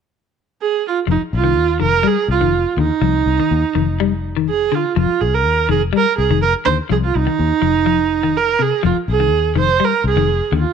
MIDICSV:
0, 0, Header, 1, 5, 480
1, 0, Start_track
1, 0, Tempo, 485044
1, 1069, Time_signature, 4, 2, 24, 8
1, 10618, End_track
2, 0, Start_track
2, 0, Title_t, "Viola"
2, 0, Program_c, 0, 41
2, 611, Note_on_c, 0, 68, 81
2, 824, Note_off_c, 0, 68, 0
2, 866, Note_on_c, 0, 65, 80
2, 966, Note_off_c, 0, 65, 0
2, 1098, Note_on_c, 0, 63, 73
2, 1199, Note_off_c, 0, 63, 0
2, 1337, Note_on_c, 0, 65, 90
2, 1771, Note_off_c, 0, 65, 0
2, 1804, Note_on_c, 0, 70, 91
2, 2048, Note_on_c, 0, 68, 88
2, 2063, Note_off_c, 0, 70, 0
2, 2276, Note_off_c, 0, 68, 0
2, 2282, Note_on_c, 0, 65, 81
2, 2723, Note_off_c, 0, 65, 0
2, 2786, Note_on_c, 0, 63, 89
2, 4169, Note_off_c, 0, 63, 0
2, 4448, Note_on_c, 0, 68, 83
2, 4696, Note_on_c, 0, 65, 80
2, 4711, Note_off_c, 0, 68, 0
2, 4920, Note_off_c, 0, 65, 0
2, 4926, Note_on_c, 0, 65, 82
2, 5158, Note_on_c, 0, 68, 83
2, 5173, Note_off_c, 0, 65, 0
2, 5287, Note_on_c, 0, 70, 82
2, 5302, Note_off_c, 0, 68, 0
2, 5635, Note_off_c, 0, 70, 0
2, 5648, Note_on_c, 0, 68, 90
2, 5752, Note_off_c, 0, 68, 0
2, 5907, Note_on_c, 0, 70, 90
2, 6113, Note_off_c, 0, 70, 0
2, 6117, Note_on_c, 0, 68, 85
2, 6337, Note_off_c, 0, 68, 0
2, 6353, Note_on_c, 0, 70, 93
2, 6461, Note_off_c, 0, 70, 0
2, 6582, Note_on_c, 0, 72, 95
2, 6692, Note_off_c, 0, 72, 0
2, 6842, Note_on_c, 0, 68, 90
2, 6897, Note_off_c, 0, 68, 0
2, 6970, Note_on_c, 0, 65, 83
2, 7089, Note_on_c, 0, 63, 98
2, 7104, Note_off_c, 0, 65, 0
2, 8282, Note_on_c, 0, 70, 87
2, 8296, Note_off_c, 0, 63, 0
2, 8530, Note_on_c, 0, 68, 80
2, 8545, Note_off_c, 0, 70, 0
2, 8752, Note_off_c, 0, 68, 0
2, 8758, Note_on_c, 0, 65, 70
2, 8864, Note_off_c, 0, 65, 0
2, 9001, Note_on_c, 0, 68, 89
2, 9441, Note_off_c, 0, 68, 0
2, 9498, Note_on_c, 0, 72, 83
2, 9741, Note_on_c, 0, 70, 83
2, 9756, Note_off_c, 0, 72, 0
2, 9958, Note_off_c, 0, 70, 0
2, 9964, Note_on_c, 0, 68, 78
2, 10402, Note_off_c, 0, 68, 0
2, 10462, Note_on_c, 0, 65, 85
2, 10618, Note_off_c, 0, 65, 0
2, 10618, End_track
3, 0, Start_track
3, 0, Title_t, "Clean electric guitar"
3, 0, Program_c, 1, 27
3, 1060, Note_on_c, 1, 53, 66
3, 1183, Note_off_c, 1, 53, 0
3, 1422, Note_on_c, 1, 51, 60
3, 1546, Note_off_c, 1, 51, 0
3, 1778, Note_on_c, 1, 51, 64
3, 1901, Note_off_c, 1, 51, 0
3, 2011, Note_on_c, 1, 55, 76
3, 2136, Note_off_c, 1, 55, 0
3, 2385, Note_on_c, 1, 51, 63
3, 2509, Note_off_c, 1, 51, 0
3, 2750, Note_on_c, 1, 50, 66
3, 2871, Note_off_c, 1, 50, 0
3, 2984, Note_on_c, 1, 53, 80
3, 3106, Note_off_c, 1, 53, 0
3, 3361, Note_on_c, 1, 51, 55
3, 3481, Note_off_c, 1, 51, 0
3, 3712, Note_on_c, 1, 51, 72
3, 3832, Note_off_c, 1, 51, 0
3, 3959, Note_on_c, 1, 55, 77
3, 4078, Note_off_c, 1, 55, 0
3, 4320, Note_on_c, 1, 51, 72
3, 4440, Note_off_c, 1, 51, 0
3, 4668, Note_on_c, 1, 50, 68
3, 4790, Note_off_c, 1, 50, 0
3, 4911, Note_on_c, 1, 53, 80
3, 5032, Note_off_c, 1, 53, 0
3, 5628, Note_on_c, 1, 51, 70
3, 5749, Note_off_c, 1, 51, 0
3, 5865, Note_on_c, 1, 55, 81
3, 5987, Note_off_c, 1, 55, 0
3, 6241, Note_on_c, 1, 51, 70
3, 6361, Note_off_c, 1, 51, 0
3, 6586, Note_on_c, 1, 50, 68
3, 6708, Note_off_c, 1, 50, 0
3, 6823, Note_on_c, 1, 53, 73
3, 6945, Note_off_c, 1, 53, 0
3, 7192, Note_on_c, 1, 51, 60
3, 7314, Note_off_c, 1, 51, 0
3, 7538, Note_on_c, 1, 53, 66
3, 7661, Note_off_c, 1, 53, 0
3, 7779, Note_on_c, 1, 53, 75
3, 7902, Note_off_c, 1, 53, 0
3, 8148, Note_on_c, 1, 51, 66
3, 8270, Note_off_c, 1, 51, 0
3, 8501, Note_on_c, 1, 48, 65
3, 8623, Note_off_c, 1, 48, 0
3, 8738, Note_on_c, 1, 53, 80
3, 8861, Note_off_c, 1, 53, 0
3, 9104, Note_on_c, 1, 51, 61
3, 9227, Note_off_c, 1, 51, 0
3, 9456, Note_on_c, 1, 51, 69
3, 9580, Note_off_c, 1, 51, 0
3, 9697, Note_on_c, 1, 55, 70
3, 9821, Note_off_c, 1, 55, 0
3, 10064, Note_on_c, 1, 51, 75
3, 10187, Note_off_c, 1, 51, 0
3, 10416, Note_on_c, 1, 50, 70
3, 10539, Note_off_c, 1, 50, 0
3, 10618, End_track
4, 0, Start_track
4, 0, Title_t, "Fingered electric bass"
4, 0, Program_c, 2, 33
4, 1067, Note_on_c, 2, 29, 88
4, 1187, Note_off_c, 2, 29, 0
4, 1315, Note_on_c, 2, 36, 77
4, 1553, Note_off_c, 2, 36, 0
4, 1553, Note_on_c, 2, 39, 79
4, 1776, Note_off_c, 2, 39, 0
4, 1796, Note_on_c, 2, 29, 66
4, 2018, Note_off_c, 2, 29, 0
4, 2259, Note_on_c, 2, 36, 67
4, 2380, Note_off_c, 2, 36, 0
4, 2386, Note_on_c, 2, 29, 83
4, 2616, Note_off_c, 2, 29, 0
4, 2739, Note_on_c, 2, 39, 75
4, 2864, Note_off_c, 2, 39, 0
4, 2983, Note_on_c, 2, 36, 81
4, 3211, Note_off_c, 2, 36, 0
4, 3224, Note_on_c, 2, 36, 77
4, 3346, Note_off_c, 2, 36, 0
4, 3473, Note_on_c, 2, 39, 89
4, 3591, Note_off_c, 2, 39, 0
4, 3713, Note_on_c, 2, 29, 87
4, 4632, Note_off_c, 2, 29, 0
4, 4915, Note_on_c, 2, 29, 93
4, 5032, Note_off_c, 2, 29, 0
4, 5158, Note_on_c, 2, 36, 69
4, 5398, Note_off_c, 2, 36, 0
4, 5398, Note_on_c, 2, 39, 89
4, 5619, Note_off_c, 2, 39, 0
4, 5634, Note_on_c, 2, 29, 67
4, 5857, Note_off_c, 2, 29, 0
4, 6117, Note_on_c, 2, 36, 70
4, 6233, Note_off_c, 2, 36, 0
4, 6238, Note_on_c, 2, 29, 97
4, 6463, Note_off_c, 2, 29, 0
4, 6597, Note_on_c, 2, 39, 83
4, 6713, Note_off_c, 2, 39, 0
4, 6831, Note_on_c, 2, 36, 93
4, 7055, Note_off_c, 2, 36, 0
4, 7079, Note_on_c, 2, 36, 81
4, 7193, Note_off_c, 2, 36, 0
4, 7316, Note_on_c, 2, 39, 91
4, 7432, Note_off_c, 2, 39, 0
4, 7541, Note_on_c, 2, 29, 76
4, 8465, Note_off_c, 2, 29, 0
4, 8754, Note_on_c, 2, 29, 92
4, 8870, Note_off_c, 2, 29, 0
4, 8984, Note_on_c, 2, 36, 78
4, 9208, Note_off_c, 2, 36, 0
4, 9208, Note_on_c, 2, 39, 80
4, 9442, Note_off_c, 2, 39, 0
4, 9454, Note_on_c, 2, 29, 72
4, 9685, Note_off_c, 2, 29, 0
4, 9935, Note_on_c, 2, 36, 70
4, 10048, Note_off_c, 2, 36, 0
4, 10054, Note_on_c, 2, 29, 89
4, 10288, Note_off_c, 2, 29, 0
4, 10409, Note_on_c, 2, 39, 83
4, 10536, Note_off_c, 2, 39, 0
4, 10618, End_track
5, 0, Start_track
5, 0, Title_t, "Muted fingered electric bass strokes"
5, 5045, Note_on_c, 9, 29, 35
5, 5144, Note_off_c, 9, 29, 0
5, 8875, Note_on_c, 9, 29, 31
5, 8974, Note_off_c, 9, 29, 0
5, 10618, End_track
0, 0, End_of_file